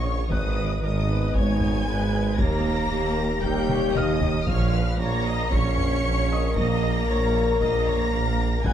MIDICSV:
0, 0, Header, 1, 11, 480
1, 0, Start_track
1, 0, Tempo, 521739
1, 281, Time_signature, 4, 2, 24, 8
1, 8033, End_track
2, 0, Start_track
2, 0, Title_t, "Violin section"
2, 0, Program_c, 0, 48
2, 0, Note_on_c, 0, 85, 114
2, 279, Note_off_c, 0, 85, 0
2, 289, Note_on_c, 0, 87, 118
2, 756, Note_off_c, 0, 87, 0
2, 777, Note_on_c, 0, 87, 116
2, 1239, Note_off_c, 0, 87, 0
2, 1260, Note_on_c, 0, 92, 127
2, 2191, Note_off_c, 0, 92, 0
2, 2196, Note_on_c, 0, 94, 127
2, 3159, Note_off_c, 0, 94, 0
2, 3171, Note_on_c, 0, 91, 127
2, 3646, Note_off_c, 0, 91, 0
2, 3646, Note_on_c, 0, 87, 127
2, 4120, Note_on_c, 0, 89, 127
2, 4123, Note_off_c, 0, 87, 0
2, 4600, Note_off_c, 0, 89, 0
2, 4600, Note_on_c, 0, 94, 127
2, 5071, Note_off_c, 0, 94, 0
2, 5089, Note_on_c, 0, 97, 127
2, 6045, Note_off_c, 0, 97, 0
2, 6046, Note_on_c, 0, 94, 127
2, 6984, Note_off_c, 0, 94, 0
2, 7000, Note_on_c, 0, 94, 127
2, 7941, Note_off_c, 0, 94, 0
2, 7968, Note_on_c, 0, 92, 127
2, 8033, Note_off_c, 0, 92, 0
2, 8033, End_track
3, 0, Start_track
3, 0, Title_t, "Felt piano"
3, 0, Program_c, 1, 0
3, 0, Control_c, 1, 64, 127
3, 0, Note_on_c, 1, 92, 70
3, 0, Note_on_c, 1, 94, 72
3, 256, Note_off_c, 1, 94, 0
3, 291, Note_on_c, 1, 90, 76
3, 299, Control_c, 1, 64, 0
3, 464, Control_c, 1, 64, 127
3, 968, Note_off_c, 1, 92, 0
3, 1689, Note_off_c, 1, 90, 0
3, 1967, Note_on_c, 1, 92, 80
3, 2217, Control_c, 1, 64, 0
3, 2370, Control_c, 1, 64, 127
3, 3367, Note_off_c, 1, 92, 0
3, 3648, Note_on_c, 1, 77, 67
3, 3649, Note_on_c, 1, 89, 107
3, 4140, Control_c, 1, 64, 0
3, 4268, Control_c, 1, 64, 127
3, 5047, Note_off_c, 1, 77, 0
3, 5048, Note_off_c, 1, 89, 0
3, 5818, Note_on_c, 1, 87, 91
3, 5819, Note_on_c, 1, 75, 67
3, 7213, Note_off_c, 1, 75, 0
3, 7213, Note_off_c, 1, 87, 0
3, 7966, Note_on_c, 1, 90, 77
3, 7967, Note_on_c, 1, 78, 60
3, 7978, Control_c, 1, 64, 0
3, 8033, Note_off_c, 1, 78, 0
3, 8033, Note_off_c, 1, 90, 0
3, 8033, End_track
4, 0, Start_track
4, 0, Title_t, "Violin section"
4, 0, Program_c, 2, 48
4, 0, Note_on_c, 2, 73, 99
4, 275, Note_on_c, 2, 75, 96
4, 282, Note_off_c, 2, 73, 0
4, 739, Note_off_c, 2, 75, 0
4, 750, Note_on_c, 2, 75, 104
4, 1225, Note_on_c, 2, 80, 118
4, 1226, Note_off_c, 2, 75, 0
4, 2193, Note_off_c, 2, 80, 0
4, 2194, Note_on_c, 2, 82, 122
4, 3158, Note_off_c, 2, 82, 0
4, 3158, Note_on_c, 2, 79, 127
4, 3639, Note_off_c, 2, 79, 0
4, 3642, Note_on_c, 2, 75, 125
4, 4121, Note_off_c, 2, 75, 0
4, 4123, Note_on_c, 2, 77, 121
4, 4592, Note_off_c, 2, 77, 0
4, 4597, Note_on_c, 2, 82, 127
4, 5069, Note_off_c, 2, 82, 0
4, 5078, Note_on_c, 2, 85, 127
4, 6039, Note_off_c, 2, 85, 0
4, 6039, Note_on_c, 2, 82, 127
4, 6985, Note_off_c, 2, 82, 0
4, 6996, Note_on_c, 2, 82, 127
4, 7939, Note_off_c, 2, 82, 0
4, 7959, Note_on_c, 2, 80, 120
4, 8033, Note_off_c, 2, 80, 0
4, 8033, End_track
5, 0, Start_track
5, 0, Title_t, "Viola section"
5, 0, Program_c, 3, 48
5, 44, Note_on_c, 3, 73, 85
5, 282, Note_off_c, 3, 73, 0
5, 282, Note_on_c, 3, 71, 95
5, 761, Note_off_c, 3, 71, 0
5, 769, Note_on_c, 3, 70, 90
5, 1001, Note_on_c, 3, 71, 99
5, 1005, Note_off_c, 3, 70, 0
5, 1235, Note_on_c, 3, 73, 106
5, 1236, Note_off_c, 3, 71, 0
5, 1718, Note_off_c, 3, 73, 0
5, 1722, Note_on_c, 3, 71, 103
5, 2191, Note_off_c, 3, 71, 0
5, 2195, Note_on_c, 3, 70, 103
5, 2678, Note_off_c, 3, 70, 0
5, 2683, Note_on_c, 3, 67, 100
5, 3152, Note_off_c, 3, 67, 0
5, 3166, Note_on_c, 3, 70, 110
5, 3403, Note_off_c, 3, 70, 0
5, 3409, Note_on_c, 3, 73, 107
5, 3645, Note_off_c, 3, 73, 0
5, 3652, Note_on_c, 3, 75, 99
5, 4122, Note_on_c, 3, 73, 112
5, 4126, Note_off_c, 3, 75, 0
5, 4357, Note_off_c, 3, 73, 0
5, 4366, Note_on_c, 3, 71, 109
5, 4603, Note_off_c, 3, 71, 0
5, 4606, Note_on_c, 3, 73, 111
5, 4838, Note_off_c, 3, 73, 0
5, 4839, Note_on_c, 3, 75, 124
5, 5074, Note_on_c, 3, 73, 124
5, 5080, Note_off_c, 3, 75, 0
5, 6018, Note_off_c, 3, 73, 0
5, 6038, Note_on_c, 3, 75, 123
5, 6510, Note_off_c, 3, 75, 0
5, 6524, Note_on_c, 3, 73, 101
5, 6993, Note_off_c, 3, 73, 0
5, 7003, Note_on_c, 3, 75, 114
5, 7242, Note_off_c, 3, 75, 0
5, 7246, Note_on_c, 3, 73, 102
5, 7483, Note_off_c, 3, 73, 0
5, 7492, Note_on_c, 3, 70, 95
5, 7965, Note_on_c, 3, 71, 103
5, 7966, Note_off_c, 3, 70, 0
5, 8033, Note_off_c, 3, 71, 0
5, 8033, End_track
6, 0, Start_track
6, 0, Title_t, "French horn section"
6, 0, Program_c, 4, 60
6, 0, Note_on_c, 4, 58, 86
6, 0, Note_on_c, 4, 61, 81
6, 239, Note_off_c, 4, 58, 0
6, 242, Note_off_c, 4, 61, 0
6, 272, Note_on_c, 4, 59, 111
6, 277, Note_on_c, 4, 63, 104
6, 2160, Note_off_c, 4, 59, 0
6, 2162, Note_off_c, 4, 63, 0
6, 2201, Note_on_c, 4, 58, 119
6, 2203, Note_on_c, 4, 67, 127
6, 3960, Note_off_c, 4, 58, 0
6, 3960, Note_off_c, 4, 67, 0
6, 4116, Note_on_c, 4, 58, 127
6, 4121, Note_on_c, 4, 70, 127
6, 7922, Note_off_c, 4, 58, 0
6, 7924, Note_off_c, 4, 70, 0
6, 7957, Note_on_c, 4, 59, 116
6, 7965, Note_on_c, 4, 68, 108
6, 8033, Note_off_c, 4, 59, 0
6, 8033, Note_off_c, 4, 68, 0
6, 8033, End_track
7, 0, Start_track
7, 0, Title_t, "Cello section"
7, 0, Program_c, 5, 48
7, 0, Note_on_c, 5, 49, 89
7, 277, Note_on_c, 5, 51, 107
7, 280, Note_off_c, 5, 49, 0
7, 743, Note_off_c, 5, 51, 0
7, 754, Note_on_c, 5, 51, 96
7, 1228, Note_off_c, 5, 51, 0
7, 1236, Note_on_c, 5, 56, 113
7, 2179, Note_off_c, 5, 56, 0
7, 2197, Note_on_c, 5, 58, 127
7, 3159, Note_off_c, 5, 58, 0
7, 3161, Note_on_c, 5, 55, 120
7, 3636, Note_on_c, 5, 51, 113
7, 3641, Note_off_c, 5, 55, 0
7, 4117, Note_on_c, 5, 53, 127
7, 4118, Note_off_c, 5, 51, 0
7, 4589, Note_off_c, 5, 53, 0
7, 4593, Note_on_c, 5, 58, 127
7, 5076, Note_on_c, 5, 61, 127
7, 5077, Note_off_c, 5, 58, 0
7, 6038, Note_off_c, 5, 61, 0
7, 6039, Note_on_c, 5, 58, 127
7, 6983, Note_off_c, 5, 58, 0
7, 6994, Note_on_c, 5, 58, 117
7, 7938, Note_off_c, 5, 58, 0
7, 7959, Note_on_c, 5, 56, 115
7, 8033, Note_off_c, 5, 56, 0
7, 8033, End_track
8, 0, Start_track
8, 0, Title_t, "Double bass section"
8, 0, Program_c, 6, 48
8, 0, Note_on_c, 6, 34, 93
8, 223, Note_off_c, 6, 34, 0
8, 280, Note_on_c, 6, 32, 98
8, 704, Note_off_c, 6, 32, 0
8, 762, Note_on_c, 6, 32, 103
8, 1185, Note_off_c, 6, 32, 0
8, 1241, Note_on_c, 6, 32, 102
8, 1664, Note_off_c, 6, 32, 0
8, 1727, Note_on_c, 6, 32, 107
8, 2147, Note_off_c, 6, 32, 0
8, 2201, Note_on_c, 6, 39, 115
8, 2624, Note_off_c, 6, 39, 0
8, 2684, Note_on_c, 6, 39, 108
8, 3106, Note_off_c, 6, 39, 0
8, 3157, Note_on_c, 6, 39, 119
8, 3582, Note_off_c, 6, 39, 0
8, 3641, Note_on_c, 6, 39, 113
8, 4064, Note_off_c, 6, 39, 0
8, 4125, Note_on_c, 6, 34, 116
8, 4546, Note_off_c, 6, 34, 0
8, 4603, Note_on_c, 6, 34, 114
8, 5025, Note_off_c, 6, 34, 0
8, 5081, Note_on_c, 6, 34, 120
8, 5504, Note_off_c, 6, 34, 0
8, 5570, Note_on_c, 6, 34, 110
8, 5989, Note_off_c, 6, 34, 0
8, 6044, Note_on_c, 6, 34, 114
8, 6466, Note_off_c, 6, 34, 0
8, 6522, Note_on_c, 6, 34, 109
8, 6945, Note_off_c, 6, 34, 0
8, 7004, Note_on_c, 6, 34, 106
8, 7426, Note_off_c, 6, 34, 0
8, 7480, Note_on_c, 6, 34, 107
8, 7904, Note_off_c, 6, 34, 0
8, 7964, Note_on_c, 6, 32, 102
8, 8033, Note_off_c, 6, 32, 0
8, 8033, End_track
9, 0, Start_track
9, 0, Title_t, "Tuba"
9, 0, Program_c, 7, 58
9, 0, Note_on_c, 7, 34, 84
9, 225, Note_off_c, 7, 34, 0
9, 283, Note_on_c, 7, 32, 97
9, 705, Note_off_c, 7, 32, 0
9, 760, Note_on_c, 7, 32, 97
9, 1184, Note_off_c, 7, 32, 0
9, 1244, Note_on_c, 7, 32, 95
9, 1666, Note_off_c, 7, 32, 0
9, 1726, Note_on_c, 7, 32, 102
9, 2147, Note_off_c, 7, 32, 0
9, 2202, Note_on_c, 7, 39, 114
9, 2625, Note_off_c, 7, 39, 0
9, 2685, Note_on_c, 7, 39, 107
9, 3042, Note_off_c, 7, 39, 0
9, 3168, Note_on_c, 7, 39, 106
9, 3588, Note_off_c, 7, 39, 0
9, 3639, Note_on_c, 7, 39, 109
9, 4063, Note_off_c, 7, 39, 0
9, 4116, Note_on_c, 7, 34, 116
9, 4542, Note_off_c, 7, 34, 0
9, 4593, Note_on_c, 7, 34, 107
9, 5020, Note_off_c, 7, 34, 0
9, 5070, Note_on_c, 7, 34, 105
9, 5498, Note_off_c, 7, 34, 0
9, 5557, Note_on_c, 7, 34, 109
9, 5982, Note_off_c, 7, 34, 0
9, 6036, Note_on_c, 7, 34, 115
9, 6461, Note_off_c, 7, 34, 0
9, 6519, Note_on_c, 7, 34, 108
9, 6943, Note_off_c, 7, 34, 0
9, 7003, Note_on_c, 7, 34, 102
9, 7425, Note_off_c, 7, 34, 0
9, 7478, Note_on_c, 7, 34, 97
9, 7903, Note_off_c, 7, 34, 0
9, 7961, Note_on_c, 7, 32, 103
9, 8033, Note_off_c, 7, 32, 0
9, 8033, End_track
10, 0, Start_track
10, 0, Title_t, "Sub bass"
10, 0, Program_c, 8, 38
10, 0, Note_on_c, 8, 34, 85
10, 281, Note_on_c, 8, 32, 101
10, 295, Note_off_c, 8, 34, 0
10, 2200, Note_on_c, 8, 27, 98
10, 2213, Note_off_c, 8, 32, 0
10, 4123, Note_on_c, 8, 34, 105
10, 4137, Note_off_c, 8, 27, 0
10, 7964, Note_on_c, 8, 32, 100
10, 7978, Note_off_c, 8, 34, 0
10, 8033, Note_off_c, 8, 32, 0
10, 8033, End_track
11, 0, Start_track
11, 0, Title_t, "Taiko and cinematic ensemble drums"
11, 281, Note_on_c, 9, 41, 116
11, 373, Note_off_c, 9, 41, 0
11, 1240, Note_on_c, 9, 41, 96
11, 1332, Note_off_c, 9, 41, 0
11, 1478, Note_on_c, 9, 45, 66
11, 1570, Note_off_c, 9, 45, 0
11, 2194, Note_on_c, 9, 41, 115
11, 2286, Note_off_c, 9, 41, 0
11, 3156, Note_on_c, 9, 41, 95
11, 3248, Note_off_c, 9, 41, 0
11, 3400, Note_on_c, 9, 47, 98
11, 3492, Note_off_c, 9, 47, 0
11, 3637, Note_on_c, 9, 47, 90
11, 3729, Note_off_c, 9, 47, 0
11, 3870, Note_on_c, 9, 43, 118
11, 3962, Note_off_c, 9, 43, 0
11, 4114, Note_on_c, 9, 41, 116
11, 4206, Note_off_c, 9, 41, 0
11, 4359, Note_on_c, 9, 37, 49
11, 4451, Note_off_c, 9, 37, 0
11, 5081, Note_on_c, 9, 41, 95
11, 5173, Note_off_c, 9, 41, 0
11, 5320, Note_on_c, 9, 45, 68
11, 5412, Note_off_c, 9, 45, 0
11, 6039, Note_on_c, 9, 41, 114
11, 6131, Note_off_c, 9, 41, 0
11, 6283, Note_on_c, 9, 37, 50
11, 6375, Note_off_c, 9, 37, 0
11, 6996, Note_on_c, 9, 41, 96
11, 7088, Note_off_c, 9, 41, 0
11, 7239, Note_on_c, 9, 45, 66
11, 7331, Note_off_c, 9, 45, 0
11, 7953, Note_on_c, 9, 41, 113
11, 8033, Note_off_c, 9, 41, 0
11, 8033, End_track
0, 0, End_of_file